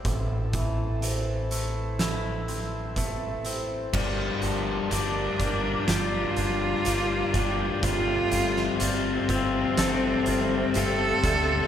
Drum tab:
CC |----------------|x---------------|----------------|
HH |x-x-x-x-x-x-x-x-|--x-x-x-x-x-x-x-|x-x-x-x-x-x-x-x-|
SD |--------o-------|--------o-------|---o----o-------|
BD |o-o---------o---|o-----o-------o-|o-----o-------o-|